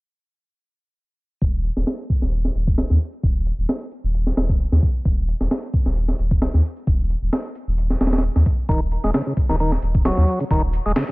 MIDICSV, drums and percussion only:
0, 0, Header, 1, 2, 480
1, 0, Start_track
1, 0, Key_signature, -6, "minor"
1, 0, Tempo, 454545
1, 1497, Time_signature, 4, 2, 24, 8
1, 11737, End_track
2, 0, Start_track
2, 0, Title_t, "Drums"
2, 1495, Note_on_c, 9, 42, 79
2, 1496, Note_on_c, 9, 36, 99
2, 1600, Note_off_c, 9, 42, 0
2, 1601, Note_off_c, 9, 36, 0
2, 1735, Note_on_c, 9, 42, 64
2, 1841, Note_off_c, 9, 42, 0
2, 1866, Note_on_c, 9, 38, 46
2, 1971, Note_off_c, 9, 38, 0
2, 1974, Note_on_c, 9, 38, 121
2, 1974, Note_on_c, 9, 42, 84
2, 2079, Note_off_c, 9, 38, 0
2, 2079, Note_off_c, 9, 42, 0
2, 2215, Note_on_c, 9, 36, 90
2, 2215, Note_on_c, 9, 42, 64
2, 2320, Note_off_c, 9, 42, 0
2, 2321, Note_off_c, 9, 36, 0
2, 2345, Note_on_c, 9, 38, 35
2, 2450, Note_off_c, 9, 38, 0
2, 2455, Note_on_c, 9, 42, 85
2, 2560, Note_off_c, 9, 42, 0
2, 2585, Note_on_c, 9, 38, 44
2, 2690, Note_off_c, 9, 38, 0
2, 2696, Note_on_c, 9, 42, 61
2, 2802, Note_off_c, 9, 42, 0
2, 2824, Note_on_c, 9, 36, 89
2, 2930, Note_off_c, 9, 36, 0
2, 2935, Note_on_c, 9, 38, 111
2, 2935, Note_on_c, 9, 42, 78
2, 3040, Note_off_c, 9, 38, 0
2, 3040, Note_off_c, 9, 42, 0
2, 3063, Note_on_c, 9, 38, 35
2, 3169, Note_off_c, 9, 38, 0
2, 3174, Note_on_c, 9, 42, 68
2, 3280, Note_off_c, 9, 42, 0
2, 3303, Note_on_c, 9, 42, 41
2, 3409, Note_off_c, 9, 42, 0
2, 3414, Note_on_c, 9, 42, 80
2, 3415, Note_on_c, 9, 36, 105
2, 3520, Note_off_c, 9, 36, 0
2, 3520, Note_off_c, 9, 42, 0
2, 3656, Note_on_c, 9, 42, 65
2, 3761, Note_off_c, 9, 42, 0
2, 3896, Note_on_c, 9, 38, 113
2, 3896, Note_on_c, 9, 46, 84
2, 4002, Note_off_c, 9, 38, 0
2, 4002, Note_off_c, 9, 46, 0
2, 4135, Note_on_c, 9, 42, 65
2, 4240, Note_off_c, 9, 42, 0
2, 4375, Note_on_c, 9, 42, 79
2, 4481, Note_off_c, 9, 42, 0
2, 4505, Note_on_c, 9, 38, 38
2, 4611, Note_off_c, 9, 38, 0
2, 4617, Note_on_c, 9, 38, 108
2, 4617, Note_on_c, 9, 42, 61
2, 4722, Note_off_c, 9, 38, 0
2, 4722, Note_off_c, 9, 42, 0
2, 4745, Note_on_c, 9, 36, 90
2, 4850, Note_off_c, 9, 36, 0
2, 4857, Note_on_c, 9, 42, 79
2, 4963, Note_off_c, 9, 42, 0
2, 4988, Note_on_c, 9, 38, 42
2, 5093, Note_off_c, 9, 38, 0
2, 5097, Note_on_c, 9, 36, 86
2, 5099, Note_on_c, 9, 42, 68
2, 5202, Note_off_c, 9, 36, 0
2, 5204, Note_off_c, 9, 42, 0
2, 5337, Note_on_c, 9, 36, 97
2, 5338, Note_on_c, 9, 42, 84
2, 5442, Note_off_c, 9, 36, 0
2, 5444, Note_off_c, 9, 42, 0
2, 5578, Note_on_c, 9, 42, 68
2, 5684, Note_off_c, 9, 42, 0
2, 5709, Note_on_c, 9, 38, 45
2, 5815, Note_off_c, 9, 38, 0
2, 5820, Note_on_c, 9, 38, 118
2, 5820, Note_on_c, 9, 42, 88
2, 5925, Note_off_c, 9, 38, 0
2, 5925, Note_off_c, 9, 42, 0
2, 6057, Note_on_c, 9, 36, 89
2, 6058, Note_on_c, 9, 42, 68
2, 6163, Note_off_c, 9, 36, 0
2, 6164, Note_off_c, 9, 42, 0
2, 6187, Note_on_c, 9, 38, 36
2, 6293, Note_off_c, 9, 38, 0
2, 6298, Note_on_c, 9, 42, 84
2, 6403, Note_off_c, 9, 42, 0
2, 6424, Note_on_c, 9, 38, 45
2, 6530, Note_off_c, 9, 38, 0
2, 6536, Note_on_c, 9, 42, 65
2, 6642, Note_off_c, 9, 42, 0
2, 6665, Note_on_c, 9, 36, 91
2, 6771, Note_off_c, 9, 36, 0
2, 6777, Note_on_c, 9, 38, 109
2, 6777, Note_on_c, 9, 42, 82
2, 6883, Note_off_c, 9, 38, 0
2, 6883, Note_off_c, 9, 42, 0
2, 6907, Note_on_c, 9, 38, 35
2, 7012, Note_off_c, 9, 38, 0
2, 7018, Note_on_c, 9, 42, 68
2, 7124, Note_off_c, 9, 42, 0
2, 7146, Note_on_c, 9, 42, 39
2, 7252, Note_off_c, 9, 42, 0
2, 7257, Note_on_c, 9, 36, 108
2, 7258, Note_on_c, 9, 42, 81
2, 7362, Note_off_c, 9, 36, 0
2, 7363, Note_off_c, 9, 42, 0
2, 7498, Note_on_c, 9, 42, 65
2, 7603, Note_off_c, 9, 42, 0
2, 7737, Note_on_c, 9, 38, 118
2, 7737, Note_on_c, 9, 46, 80
2, 7843, Note_off_c, 9, 38, 0
2, 7843, Note_off_c, 9, 46, 0
2, 7976, Note_on_c, 9, 42, 65
2, 8082, Note_off_c, 9, 42, 0
2, 8217, Note_on_c, 9, 42, 86
2, 8323, Note_off_c, 9, 42, 0
2, 8346, Note_on_c, 9, 38, 38
2, 8452, Note_off_c, 9, 38, 0
2, 8456, Note_on_c, 9, 38, 83
2, 8456, Note_on_c, 9, 42, 62
2, 8521, Note_off_c, 9, 38, 0
2, 8521, Note_off_c, 9, 42, 0
2, 8521, Note_on_c, 9, 38, 82
2, 8521, Note_on_c, 9, 42, 66
2, 8583, Note_off_c, 9, 38, 0
2, 8583, Note_off_c, 9, 42, 0
2, 8583, Note_on_c, 9, 38, 84
2, 8583, Note_on_c, 9, 42, 68
2, 8640, Note_off_c, 9, 38, 0
2, 8640, Note_off_c, 9, 42, 0
2, 8640, Note_on_c, 9, 38, 83
2, 8640, Note_on_c, 9, 42, 67
2, 8695, Note_off_c, 9, 42, 0
2, 8695, Note_on_c, 9, 42, 83
2, 8745, Note_off_c, 9, 38, 0
2, 8800, Note_off_c, 9, 42, 0
2, 8826, Note_on_c, 9, 38, 43
2, 8931, Note_off_c, 9, 38, 0
2, 8935, Note_on_c, 9, 36, 94
2, 8935, Note_on_c, 9, 42, 66
2, 9041, Note_off_c, 9, 36, 0
2, 9041, Note_off_c, 9, 42, 0
2, 9175, Note_on_c, 9, 36, 102
2, 9176, Note_on_c, 9, 42, 81
2, 9281, Note_off_c, 9, 36, 0
2, 9281, Note_off_c, 9, 42, 0
2, 9416, Note_on_c, 9, 42, 63
2, 9521, Note_off_c, 9, 42, 0
2, 9545, Note_on_c, 9, 38, 45
2, 9650, Note_off_c, 9, 38, 0
2, 9654, Note_on_c, 9, 38, 112
2, 9654, Note_on_c, 9, 42, 89
2, 9759, Note_off_c, 9, 38, 0
2, 9759, Note_off_c, 9, 42, 0
2, 9894, Note_on_c, 9, 42, 65
2, 9895, Note_on_c, 9, 36, 89
2, 9999, Note_off_c, 9, 42, 0
2, 10000, Note_off_c, 9, 36, 0
2, 10025, Note_on_c, 9, 38, 36
2, 10130, Note_off_c, 9, 38, 0
2, 10135, Note_on_c, 9, 42, 86
2, 10241, Note_off_c, 9, 42, 0
2, 10265, Note_on_c, 9, 38, 45
2, 10370, Note_off_c, 9, 38, 0
2, 10374, Note_on_c, 9, 42, 64
2, 10479, Note_off_c, 9, 42, 0
2, 10504, Note_on_c, 9, 36, 95
2, 10609, Note_off_c, 9, 36, 0
2, 10614, Note_on_c, 9, 38, 110
2, 10614, Note_on_c, 9, 42, 86
2, 10720, Note_off_c, 9, 38, 0
2, 10720, Note_off_c, 9, 42, 0
2, 10744, Note_on_c, 9, 38, 36
2, 10849, Note_off_c, 9, 38, 0
2, 10854, Note_on_c, 9, 42, 66
2, 10960, Note_off_c, 9, 42, 0
2, 10984, Note_on_c, 9, 42, 43
2, 11090, Note_off_c, 9, 42, 0
2, 11095, Note_on_c, 9, 36, 105
2, 11095, Note_on_c, 9, 42, 86
2, 11200, Note_off_c, 9, 36, 0
2, 11200, Note_off_c, 9, 42, 0
2, 11335, Note_on_c, 9, 42, 66
2, 11441, Note_off_c, 9, 42, 0
2, 11574, Note_on_c, 9, 38, 123
2, 11574, Note_on_c, 9, 46, 84
2, 11679, Note_off_c, 9, 38, 0
2, 11679, Note_off_c, 9, 46, 0
2, 11737, End_track
0, 0, End_of_file